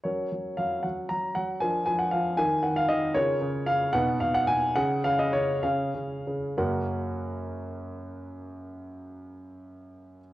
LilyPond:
<<
  \new Staff \with { instrumentName = "Grand piano" } { \time 6/8 \key fis \major \tempo 4. = 71 << { cis''4 eis''8 fis''8 ais''8 fis''8 | gis''8 gis''16 fis''16 eis''8 gis''8 fis''16 eis''16 dis''8 | cis''4 eis''8 fis''8 eis''16 fis''16 gis''8 | fis''8 eis''16 dis''16 cis''8 eis''4. |
<fis, cis ais cis' fis' ais' fis''>2.~ | <fis, cis ais cis' fis' ais' fis''>2. | } \\ { <cis' ais'>2. | <d' ais'>4. <dis' ais'>4. | <eis' ais'>4. <dis' b'>4. | <cis' gis'>4. <cis' gis'>4. |
r2. | r2. | } >> }
  \new Staff \with { instrumentName = "Grand piano" } { \clef bass \time 6/8 \key fis \major fis8 fis8 fis8 fis8 fis8 fis8 | eis8 eis8 eis8 dis8 dis8 dis8 | cis8 cis8 cis8 b,8 b,8 b,8 | cis8 cis8 cis8 cis8 cis8 cis8 |
r2. | r2. | }
>>